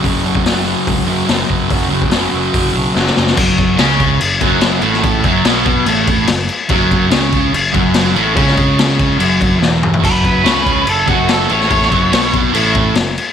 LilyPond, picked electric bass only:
\new Staff \with { instrumentName = "Picked electric bass" } { \clef bass \time 4/4 \key fis \minor \tempo 4 = 144 fis,,8 fis,,8 fis,,4 cis,8 fis,8 fis,,8 fis,,8 | fis,,8 fis,,8 fis,,8 fis,,8 fis,,8 b,,8 fis,,8 fis,,8 | fis,,4 cis,4 fis,,8 fis,,4 a,,8~ | a,,8 fis,,8 b,,4 a,,4 fis,,8 r8 |
fis,,4 cis,4 fis,,8 fis,,4 a,,8 | cis,2 fis,,4 e,,4 | fis,,4 cis,4 fis,,8 fis,,4 a,,8~ | a,,8 fis,,8 b,,4 a,,4 fis,,8 r8 | }